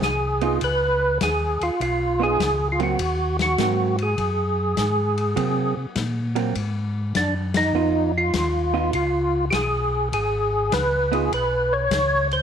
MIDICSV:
0, 0, Header, 1, 5, 480
1, 0, Start_track
1, 0, Tempo, 594648
1, 492, Time_signature, 4, 2, 24, 8
1, 10026, End_track
2, 0, Start_track
2, 0, Title_t, "Tonewheel organ"
2, 0, Program_c, 0, 16
2, 30, Note_on_c, 0, 68, 92
2, 469, Note_off_c, 0, 68, 0
2, 517, Note_on_c, 0, 71, 104
2, 952, Note_off_c, 0, 71, 0
2, 994, Note_on_c, 0, 68, 97
2, 1314, Note_on_c, 0, 65, 90
2, 1316, Note_off_c, 0, 68, 0
2, 1461, Note_off_c, 0, 65, 0
2, 1470, Note_on_c, 0, 65, 83
2, 1795, Note_off_c, 0, 65, 0
2, 1803, Note_on_c, 0, 68, 115
2, 2166, Note_off_c, 0, 68, 0
2, 2196, Note_on_c, 0, 65, 65
2, 2264, Note_off_c, 0, 65, 0
2, 2285, Note_on_c, 0, 66, 93
2, 2718, Note_off_c, 0, 66, 0
2, 2764, Note_on_c, 0, 66, 99
2, 3198, Note_off_c, 0, 66, 0
2, 3249, Note_on_c, 0, 68, 87
2, 4640, Note_off_c, 0, 68, 0
2, 5786, Note_on_c, 0, 62, 89
2, 5928, Note_off_c, 0, 62, 0
2, 6111, Note_on_c, 0, 63, 102
2, 6551, Note_off_c, 0, 63, 0
2, 6600, Note_on_c, 0, 65, 91
2, 7192, Note_off_c, 0, 65, 0
2, 7224, Note_on_c, 0, 65, 92
2, 7630, Note_off_c, 0, 65, 0
2, 7673, Note_on_c, 0, 67, 68
2, 7695, Note_on_c, 0, 68, 96
2, 7701, Note_off_c, 0, 67, 0
2, 8141, Note_off_c, 0, 68, 0
2, 8183, Note_on_c, 0, 68, 98
2, 8664, Note_on_c, 0, 71, 107
2, 8671, Note_off_c, 0, 68, 0
2, 8985, Note_on_c, 0, 68, 90
2, 8991, Note_off_c, 0, 71, 0
2, 9141, Note_off_c, 0, 68, 0
2, 9153, Note_on_c, 0, 71, 98
2, 9466, Note_on_c, 0, 73, 118
2, 9475, Note_off_c, 0, 71, 0
2, 9908, Note_off_c, 0, 73, 0
2, 9952, Note_on_c, 0, 72, 91
2, 10026, Note_off_c, 0, 72, 0
2, 10026, End_track
3, 0, Start_track
3, 0, Title_t, "Hollow-body jazz guitar"
3, 0, Program_c, 1, 26
3, 336, Note_on_c, 1, 59, 67
3, 343, Note_on_c, 1, 63, 72
3, 344, Note_on_c, 1, 65, 84
3, 477, Note_off_c, 1, 59, 0
3, 480, Note_off_c, 1, 63, 0
3, 481, Note_off_c, 1, 65, 0
3, 1773, Note_on_c, 1, 59, 63
3, 1783, Note_on_c, 1, 63, 69
3, 1787, Note_on_c, 1, 65, 70
3, 1915, Note_off_c, 1, 59, 0
3, 1920, Note_off_c, 1, 63, 0
3, 1923, Note_off_c, 1, 65, 0
3, 2256, Note_on_c, 1, 54, 64
3, 2259, Note_on_c, 1, 58, 70
3, 2262, Note_on_c, 1, 60, 74
3, 2397, Note_off_c, 1, 54, 0
3, 2398, Note_off_c, 1, 58, 0
3, 2400, Note_off_c, 1, 60, 0
3, 2898, Note_on_c, 1, 54, 71
3, 2903, Note_on_c, 1, 58, 65
3, 2909, Note_on_c, 1, 60, 62
3, 3187, Note_off_c, 1, 54, 0
3, 3189, Note_off_c, 1, 58, 0
3, 3192, Note_off_c, 1, 60, 0
3, 4328, Note_on_c, 1, 54, 61
3, 4331, Note_on_c, 1, 58, 60
3, 4334, Note_on_c, 1, 60, 71
3, 4622, Note_off_c, 1, 54, 0
3, 4623, Note_off_c, 1, 58, 0
3, 4624, Note_off_c, 1, 60, 0
3, 5129, Note_on_c, 1, 54, 74
3, 5136, Note_on_c, 1, 58, 75
3, 5137, Note_on_c, 1, 60, 79
3, 5274, Note_off_c, 1, 54, 0
3, 5277, Note_off_c, 1, 58, 0
3, 5278, Note_off_c, 1, 60, 0
3, 6255, Note_on_c, 1, 59, 57
3, 6259, Note_on_c, 1, 63, 59
3, 6262, Note_on_c, 1, 65, 64
3, 6545, Note_off_c, 1, 59, 0
3, 6547, Note_off_c, 1, 63, 0
3, 6548, Note_off_c, 1, 65, 0
3, 7052, Note_on_c, 1, 59, 55
3, 7053, Note_on_c, 1, 63, 64
3, 7059, Note_on_c, 1, 65, 74
3, 7195, Note_off_c, 1, 59, 0
3, 7195, Note_off_c, 1, 63, 0
3, 7198, Note_off_c, 1, 65, 0
3, 8973, Note_on_c, 1, 59, 61
3, 8978, Note_on_c, 1, 63, 67
3, 8984, Note_on_c, 1, 65, 60
3, 9115, Note_off_c, 1, 59, 0
3, 9117, Note_off_c, 1, 63, 0
3, 9120, Note_off_c, 1, 65, 0
3, 10026, End_track
4, 0, Start_track
4, 0, Title_t, "Tonewheel organ"
4, 0, Program_c, 2, 16
4, 13, Note_on_c, 2, 36, 94
4, 478, Note_off_c, 2, 36, 0
4, 492, Note_on_c, 2, 37, 87
4, 958, Note_off_c, 2, 37, 0
4, 973, Note_on_c, 2, 39, 85
4, 1274, Note_off_c, 2, 39, 0
4, 1295, Note_on_c, 2, 39, 35
4, 1374, Note_off_c, 2, 39, 0
4, 1452, Note_on_c, 2, 35, 84
4, 1918, Note_off_c, 2, 35, 0
4, 1932, Note_on_c, 2, 37, 90
4, 2398, Note_off_c, 2, 37, 0
4, 2413, Note_on_c, 2, 39, 83
4, 2878, Note_off_c, 2, 39, 0
4, 2891, Note_on_c, 2, 44, 90
4, 3357, Note_off_c, 2, 44, 0
4, 3371, Note_on_c, 2, 42, 81
4, 3838, Note_off_c, 2, 42, 0
4, 3851, Note_on_c, 2, 44, 90
4, 4317, Note_off_c, 2, 44, 0
4, 4331, Note_on_c, 2, 48, 87
4, 4633, Note_off_c, 2, 48, 0
4, 4653, Note_on_c, 2, 48, 43
4, 4732, Note_off_c, 2, 48, 0
4, 4806, Note_on_c, 2, 46, 90
4, 5275, Note_off_c, 2, 46, 0
4, 5290, Note_on_c, 2, 44, 77
4, 5757, Note_off_c, 2, 44, 0
4, 5768, Note_on_c, 2, 42, 82
4, 6235, Note_off_c, 2, 42, 0
4, 6241, Note_on_c, 2, 41, 81
4, 6712, Note_off_c, 2, 41, 0
4, 6727, Note_on_c, 2, 39, 87
4, 7195, Note_off_c, 2, 39, 0
4, 7208, Note_on_c, 2, 37, 88
4, 7675, Note_off_c, 2, 37, 0
4, 7688, Note_on_c, 2, 35, 91
4, 8155, Note_off_c, 2, 35, 0
4, 8170, Note_on_c, 2, 32, 84
4, 8636, Note_off_c, 2, 32, 0
4, 8650, Note_on_c, 2, 37, 85
4, 9116, Note_off_c, 2, 37, 0
4, 9133, Note_on_c, 2, 35, 80
4, 9598, Note_off_c, 2, 35, 0
4, 9610, Note_on_c, 2, 37, 90
4, 10026, Note_off_c, 2, 37, 0
4, 10026, End_track
5, 0, Start_track
5, 0, Title_t, "Drums"
5, 13, Note_on_c, 9, 36, 15
5, 15, Note_on_c, 9, 44, 53
5, 16, Note_on_c, 9, 38, 64
5, 94, Note_off_c, 9, 36, 0
5, 96, Note_off_c, 9, 44, 0
5, 97, Note_off_c, 9, 38, 0
5, 333, Note_on_c, 9, 51, 45
5, 414, Note_off_c, 9, 51, 0
5, 492, Note_on_c, 9, 51, 60
5, 494, Note_on_c, 9, 36, 20
5, 573, Note_off_c, 9, 51, 0
5, 575, Note_off_c, 9, 36, 0
5, 975, Note_on_c, 9, 36, 21
5, 975, Note_on_c, 9, 44, 50
5, 975, Note_on_c, 9, 51, 70
5, 976, Note_on_c, 9, 38, 61
5, 1055, Note_off_c, 9, 44, 0
5, 1055, Note_off_c, 9, 51, 0
5, 1056, Note_off_c, 9, 36, 0
5, 1056, Note_off_c, 9, 38, 0
5, 1302, Note_on_c, 9, 51, 48
5, 1383, Note_off_c, 9, 51, 0
5, 1456, Note_on_c, 9, 36, 17
5, 1462, Note_on_c, 9, 51, 56
5, 1537, Note_off_c, 9, 36, 0
5, 1542, Note_off_c, 9, 51, 0
5, 1935, Note_on_c, 9, 36, 23
5, 1939, Note_on_c, 9, 38, 71
5, 1939, Note_on_c, 9, 44, 52
5, 1939, Note_on_c, 9, 51, 62
5, 2016, Note_off_c, 9, 36, 0
5, 2019, Note_off_c, 9, 44, 0
5, 2019, Note_off_c, 9, 51, 0
5, 2020, Note_off_c, 9, 38, 0
5, 2258, Note_on_c, 9, 51, 41
5, 2338, Note_off_c, 9, 51, 0
5, 2414, Note_on_c, 9, 36, 19
5, 2414, Note_on_c, 9, 51, 67
5, 2495, Note_off_c, 9, 36, 0
5, 2495, Note_off_c, 9, 51, 0
5, 2738, Note_on_c, 9, 51, 44
5, 2739, Note_on_c, 9, 38, 56
5, 2818, Note_off_c, 9, 51, 0
5, 2819, Note_off_c, 9, 38, 0
5, 2892, Note_on_c, 9, 44, 65
5, 2892, Note_on_c, 9, 51, 59
5, 2893, Note_on_c, 9, 38, 67
5, 2894, Note_on_c, 9, 36, 17
5, 2973, Note_off_c, 9, 44, 0
5, 2973, Note_off_c, 9, 51, 0
5, 2974, Note_off_c, 9, 38, 0
5, 2975, Note_off_c, 9, 36, 0
5, 3217, Note_on_c, 9, 51, 44
5, 3297, Note_off_c, 9, 51, 0
5, 3372, Note_on_c, 9, 36, 25
5, 3373, Note_on_c, 9, 51, 49
5, 3453, Note_off_c, 9, 36, 0
5, 3453, Note_off_c, 9, 51, 0
5, 3850, Note_on_c, 9, 44, 60
5, 3850, Note_on_c, 9, 51, 64
5, 3851, Note_on_c, 9, 38, 61
5, 3852, Note_on_c, 9, 36, 26
5, 3931, Note_off_c, 9, 44, 0
5, 3931, Note_off_c, 9, 51, 0
5, 3932, Note_off_c, 9, 38, 0
5, 3933, Note_off_c, 9, 36, 0
5, 4178, Note_on_c, 9, 51, 44
5, 4259, Note_off_c, 9, 51, 0
5, 4332, Note_on_c, 9, 36, 27
5, 4333, Note_on_c, 9, 51, 64
5, 4413, Note_off_c, 9, 36, 0
5, 4414, Note_off_c, 9, 51, 0
5, 4808, Note_on_c, 9, 44, 51
5, 4808, Note_on_c, 9, 51, 61
5, 4809, Note_on_c, 9, 38, 62
5, 4811, Note_on_c, 9, 36, 26
5, 4889, Note_off_c, 9, 38, 0
5, 4889, Note_off_c, 9, 44, 0
5, 4889, Note_off_c, 9, 51, 0
5, 4891, Note_off_c, 9, 36, 0
5, 5133, Note_on_c, 9, 51, 47
5, 5214, Note_off_c, 9, 51, 0
5, 5290, Note_on_c, 9, 51, 57
5, 5291, Note_on_c, 9, 36, 19
5, 5371, Note_off_c, 9, 51, 0
5, 5372, Note_off_c, 9, 36, 0
5, 5770, Note_on_c, 9, 36, 22
5, 5771, Note_on_c, 9, 38, 58
5, 5771, Note_on_c, 9, 44, 54
5, 5771, Note_on_c, 9, 51, 64
5, 5850, Note_off_c, 9, 36, 0
5, 5851, Note_off_c, 9, 44, 0
5, 5851, Note_off_c, 9, 51, 0
5, 5852, Note_off_c, 9, 38, 0
5, 6088, Note_on_c, 9, 51, 70
5, 6089, Note_on_c, 9, 38, 79
5, 6168, Note_off_c, 9, 51, 0
5, 6169, Note_off_c, 9, 38, 0
5, 6728, Note_on_c, 9, 44, 60
5, 6728, Note_on_c, 9, 51, 66
5, 6729, Note_on_c, 9, 36, 28
5, 6729, Note_on_c, 9, 38, 69
5, 6809, Note_off_c, 9, 44, 0
5, 6809, Note_off_c, 9, 51, 0
5, 6810, Note_off_c, 9, 36, 0
5, 6810, Note_off_c, 9, 38, 0
5, 7208, Note_on_c, 9, 36, 23
5, 7209, Note_on_c, 9, 51, 57
5, 7289, Note_off_c, 9, 36, 0
5, 7290, Note_off_c, 9, 51, 0
5, 7688, Note_on_c, 9, 44, 54
5, 7688, Note_on_c, 9, 51, 70
5, 7689, Note_on_c, 9, 36, 24
5, 7689, Note_on_c, 9, 38, 60
5, 7769, Note_off_c, 9, 44, 0
5, 7769, Note_off_c, 9, 51, 0
5, 7770, Note_off_c, 9, 36, 0
5, 7770, Note_off_c, 9, 38, 0
5, 8171, Note_on_c, 9, 36, 23
5, 8176, Note_on_c, 9, 51, 64
5, 8252, Note_off_c, 9, 36, 0
5, 8257, Note_off_c, 9, 51, 0
5, 8652, Note_on_c, 9, 36, 18
5, 8654, Note_on_c, 9, 44, 50
5, 8654, Note_on_c, 9, 51, 68
5, 8655, Note_on_c, 9, 38, 67
5, 8733, Note_off_c, 9, 36, 0
5, 8735, Note_off_c, 9, 38, 0
5, 8735, Note_off_c, 9, 44, 0
5, 8735, Note_off_c, 9, 51, 0
5, 8982, Note_on_c, 9, 51, 43
5, 9063, Note_off_c, 9, 51, 0
5, 9134, Note_on_c, 9, 36, 21
5, 9142, Note_on_c, 9, 51, 51
5, 9215, Note_off_c, 9, 36, 0
5, 9223, Note_off_c, 9, 51, 0
5, 9612, Note_on_c, 9, 36, 20
5, 9615, Note_on_c, 9, 44, 58
5, 9615, Note_on_c, 9, 51, 60
5, 9616, Note_on_c, 9, 38, 69
5, 9693, Note_off_c, 9, 36, 0
5, 9696, Note_off_c, 9, 44, 0
5, 9696, Note_off_c, 9, 51, 0
5, 9697, Note_off_c, 9, 38, 0
5, 9940, Note_on_c, 9, 51, 42
5, 10021, Note_off_c, 9, 51, 0
5, 10026, End_track
0, 0, End_of_file